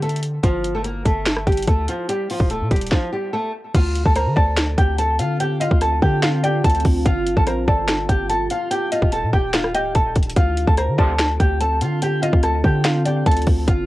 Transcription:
Already playing: D3
0.02 A3 A4, closed hi-hat
0.09 closed hi-hat
0.16 closed hi-hat
0.23 closed hi-hat
0.43 G1 F3 F4, kick, closed hi-hat
0.64 closed hi-hat
0.75 A3 A4
0.84 A#3 A#4, closed hi-hat
1.05 G1 A3 A4, kick, closed hi-hat
1.26 finger snap, snare, closed hi-hat
1.37 cross-stick
1.47 G1 G3 G4, kick, closed hi-hat
1.52 closed hi-hat
1.57 closed hi-hat
1.62 closed hi-hat
1.67 D2 A3 A4, kick, closed hi-hat
1.88 F3 F4, closed hi-hat
2.09 G3 G4, closed hi-hat
2.30 F3 F4, open hi-hat
2.40 D#1, kick
2.50 A3 A4, closed hi-hat
2.61 A#2
2.71 D#1 G3 G4, kick, closed hi-hat
2.76 closed hi-hat
2.81 closed hi-hat
2.87 closed hi-hat
2.92 F3 F4, kick, snare
3.13 G3 G4
3.33 A3 A4
3.74 D2 D3 C4 F4 F5, kick, closed hi-hat, crash
3.95 closed hi-hat
4.06 D2 A4 A5, kick
4.16 A#4 C5 A#5, cross-stick, closed hi-hat
4.26 D3
4.36 D2 A4 D5 A5, kick
4.57 finger snap, snare, closed hi-hat
4.78 D2 G4 G5, kick, closed hi-hat
4.98 A4 A5, closed hi-hat
5.19 D3 F4 F5, closed hi-hat
5.40 G4 G5, closed hi-hat
5.60 F4 D#5 F5, closed hi-hat
5.71 D2, kick
5.81 A4 A5, cross-stick, closed hi-hat
6.02 D3 G4 G5, kick
6.22 F4 F5, finger snap, snare, closed hi-hat
6.43 G4 D5 G5, closed hi-hat
6.64 D2 A4 A5, kick, closed hi-hat
6.69 closed hi-hat
6.75 closed hi-hat
6.80 closed hi-hat
6.85 D2, kick, open hi-hat
7.05 G1 G3 A#3 F4 F5, kick, closed hi-hat
7.26 closed hi-hat
7.37 A#1 A4 A5, kick
7.47 A#4 C5 A#5, cross-stick, closed hi-hat
7.67 G1 A4 D5 A5, kick
7.88 finger snap, snare, closed hi-hat
8.09 G1 G4 G5, kick, closed hi-hat
8.29 A4 A5, closed hi-hat
8.50 F4 F5, closed hi-hat
8.71 D#3 D4 G4 G5, closed hi-hat
8.92 F4 D#5 F5, closed hi-hat
9.02 D#1, kick
9.12 A4 A5, closed hi-hat
9.23 A#2
9.33 D#1 G4 G5, kick
9.54 F4 F5, finger snap, snare, closed hi-hat
9.64 cross-stick
9.74 D1 G4 D#5 G5, closed hi-hat
9.95 D#1 A4 A5, kick, closed hi-hat
10.16 D#1, kick, closed hi-hat, open hi-hat
10.23 closed hi-hat
10.30 closed hi-hat
10.37 D2 D3 C4 F4 F5, kick, closed hi-hat
10.57 closed hi-hat
10.68 D2 A4 A5, kick
10.78 A#4 C5 A#5, cross-stick, closed hi-hat
10.88 D3
10.98 D2 C3 D3 F3 A4 D5 A5, kick
11.19 finger snap, snare, closed hi-hat
11.40 D2 G4 G5, kick, closed hi-hat
11.61 A4 A5, closed hi-hat
11.81 D3 F4 F5, closed hi-hat
12.02 G4 G5, closed hi-hat
12.22 F4 D#5 F5, closed hi-hat
12.33 D2, kick
12.43 A4 A5, cross-stick, closed hi-hat
12.64 D3 G4 G5, kick
12.84 F4 F5, finger snap, snare, closed hi-hat
13.05 G4 D5 G5, closed hi-hat
13.26 D2 A4 A5, kick, closed hi-hat
13.31 closed hi-hat
13.37 closed hi-hat
13.42 closed hi-hat
13.47 D2, kick, open hi-hat
13.67 G1 F4 F5, kick, closed hi-hat

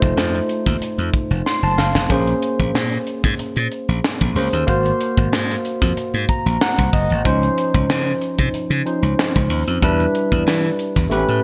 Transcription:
Already playing: A3 D#4 F4 C5
0.02 F1, kick, closed hi-hat
0.17 F2, snare
0.35 closed hi-hat
0.49 closed hi-hat
0.66 D#2, kick, snare, closed hi-hat
0.81 muted slap bass stroke, closed hi-hat
0.98 F2, closed hi-hat
1.14 kick, closed hi-hat
1.31 F1, closed hi-hat
1.46 C6, snare
1.63 F#1 A5
1.78 F#1 F5, snare
1.95 F1, snare
2.09 A#1 A#3 C#4 G#4 C5, kick, closed hi-hat
2.27 closed hi-hat
2.42 closed hi-hat
2.60 A#1, kick, closed hi-hat
2.75 A#2, snare
2.92 closed hi-hat
3.07 closed hi-hat
3.24 G#2, kick, snare, closed hi-hat
3.39 muted slap bass stroke, closed hi-hat
3.56 A#2, closed hi-hat
3.72 closed hi-hat
3.89 A#1, closed hi-hat
4.04 snare
4.21 A#1, kick, closed hi-hat
4.35 C#2 A#3 C#4 G#4 C5, open hi-hat
4.53 D#2, closed hi-hat
4.67 G#1 A#3 F#4 C5 F5, kick, closed hi-hat
4.86 closed hi-hat
5.01 closed hi-hat
5.17 G#1, kick, closed hi-hat
5.32 G#2, snare
5.50 snare, closed hi-hat
5.65 closed hi-hat
5.82 F2, kick, snare, closed hi-hat
5.97 muted slap bass stroke, closed hi-hat
6.14 G#2, closed hi-hat
6.29 A#5, kick, closed hi-hat
6.46 A#1, closed hi-hat
6.61 F#5, snare
6.78 C2, kick, closed hi-hat
6.93 F#1 D#5, kick, open hi-hat
7.10 G#1, closed hi-hat
7.24 C#2 F3 C#4 D#4 C5, kick, closed hi-hat
7.43 closed hi-hat
7.58 closed hi-hat
7.74 C#2, kick, closed hi-hat
7.89 C#3, snare
8.07 closed hi-hat
8.21 closed hi-hat
8.38 C3, kick, closed hi-hat
8.53 muted slap bass stroke, closed hi-hat
8.70 C#3, closed hi-hat
8.85 F3 C#4 D#4 C5, closed hi-hat
9.03 C#2, closed hi-hat
9.19 snare
9.36 C#2, kick, closed hi-hat
9.50 D#2, open hi-hat
9.67 F2, closed hi-hat
9.82 E2 G3 D4 E4 B4, kick, closed hi-hat
10.00 closed hi-hat
10.15 closed hi-hat
10.32 E2, kick, closed hi-hat
10.46 E3, snare
10.65 closed hi-hat
10.79 closed hi-hat
10.96 E2, kick, snare, closed hi-hat
11.10 A1 A3 B3 G4 B4, closed hi-hat
11.17 C#4
11.29 A2, closed hi-hat

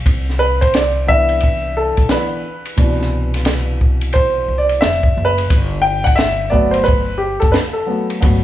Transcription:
0.06 C2, kick, ride
0.30 snare
0.39 B4
0.61 C5, kick, ride
0.74 D5, snare, hi-hat pedal, ride
1.07 E3 B3 D4 E5, kick
1.29 ride
1.41 kick, ride
1.77 A4
1.97 B1, kick, ride
2.09 E3 B3 D4 B4, snare, hi-hat pedal, ride
2.65 ride
2.76 C2 B2 E3 D4, kick, ride
3.01 snare
3.34 snare, ride
3.45 snare, hi-hat pedal, ride
3.81 kick
4.01 ride
4.13 C5, kick, ride
4.48 C2
4.58 D5
4.69 ride
4.81 F1 E5, snare, hi-hat pedal, ride
5.03 kick
5.17 F#1
5.25 B4
5.38 ride
5.50 G1, kick, ride
5.82 G5
6.04 F#5, kick, ride
6.16 E5, snare, hi-hat pedal, ride
6.50 F#3 A3 B3 D5, kick
6.71 C5, ride
6.84 B4, ride
6.88 kick
7.18 G4
7.40 F#1 A4, kick, ride
7.52 B4, snare, hi-hat pedal, ride
7.73 A4
7.86 F#3 A3 B3
8.10 ride
8.20 G1 F#3 A3 B3, kick, ride

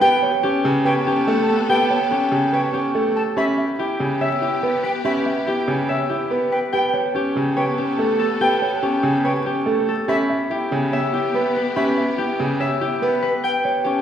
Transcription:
Already playing: G4 B4 B5
0.01 B3 G4 A4 G5
0.23 C#5
0.43 C#4 G4
0.64 C#3 G4
0.85 B4 C#5 G5
1.07 C#4 G4
1.27 A3 A4
1.48 A4 A5
1.69 B3 G4 G5
1.90 C#5
2.11 C#4 G4
2.31 C#3 G4
2.53 B4 C#5 G5
2.73 C#4 G4
2.95 A3 A4
3.16 A4 A5
3.37 B3 C#4 G4 E5 B5
3.58 E5
3.79 E4 G4
4.00 C#3 G4
4.21 C#5 E5
4.42 E4 G4
4.63 B3 B4
4.83 B4 G5
5.05 C#4 G4 E5 B5
5.26 E5
5.47 E4 G4
5.68 C#3 G4
5.89 C#5 E5
6.09 E4 G4
6.31 B3 B4
6.52 B4 G5
6.72 B3 G4 A4 G5
6.94 C#5
7.15 C#4 G4
7.36 C#3 G4
7.56 B4 C#5 G5
7.78 C#4 G4
7.99 A3 A4
8.19 A4
8.41 B3 G4 G5
8.62 C#5
8.83 C#4 G4
9.03 C#3 G4
9.25 B4 C#5 G5
9.45 C#4 G4
9.66 A3 A4
9.88 A4
10.08 B3 C#4 G4 E5 B5
10.29 E5
10.50 E4 G4
10.71 C#3 G4
10.93 C#5 E5
11.13 E4 G4
11.35 B3 B4
11.56 B4
11.76 C#4 G4 E5 B5
11.98 E5
12.18 E4 G4
12.40 C#3 G4
12.60 C#5 E5
12.81 E4 G4
13.02 B3 B4
13.22 B4
13.44 B3 A4 G5
13.65 C#5
13.84 C#4 G4

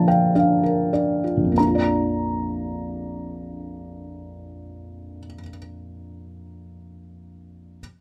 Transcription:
Already playing: A#2 F3 D4 F4 A#4 A5 A#5
0.08 F5 G5
0.35 D4 F5
0.63 A#4
0.93 D4 D5
1.24 F4
1.37 A#1
1.44 F2
1.52 A#3
1.58 D4 A#5
1.67 F4
1.75 D5

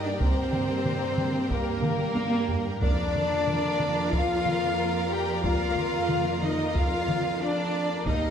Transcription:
Already playing: G2 A#3 G4 A#4 D5 G5 A#5
0.04 D4 D5
0.19 C4 C5, taiko
0.53 taiko mid
0.85 taiko mid
1.18 taiko mid
1.50 A#3 A#4, taiko
1.83 taiko mid
2.15 taiko high
2.49 taiko low
2.80 F2 A#3 D4 F4 A#4 D5 F5 A#5, taiko
3.15 taiko mid
3.47 taiko mid
3.80 taiko mid
4.11 F4 F5, taiko
4.46 taiko mid
5.10 G4 G5
5.42 F4 F5, taiko
5.76 taiko mid
6.09 taiko mid
6.41 D#4 D#5, taiko mid
6.75 F4 F5, taiko
7.08 taiko mid
7.41 D4 D5
8.06 D#2 A#3 D#4 G4 A#4 D#5 F5 A#5, taiko

